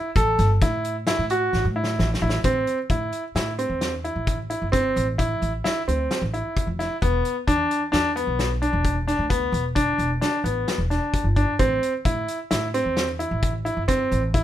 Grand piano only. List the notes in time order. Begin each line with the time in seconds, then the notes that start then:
0.16 A4
0.62 E4
1.07 E4
1.31 F#4
1.76 E4
2.22 E4
2.45 C4
2.90 E4
3.36 E4
3.59 C4
4.04 E4
4.50 E4
4.72 C4
5.18 E4
5.64 E4
5.88 C4
6.34 E4
6.79 E4
7.02 B3
7.47 D4
7.92 D4
8.16 B3
8.62 D4
9.08 D4
9.30 B3
9.75 D4
10.21 D4
10.44 B3
10.90 D4
11.36 D4
11.59 C4
12.05 E4
12.51 E4
12.74 C4
13.19 E4
13.65 E4
13.88 C4
14.34 E4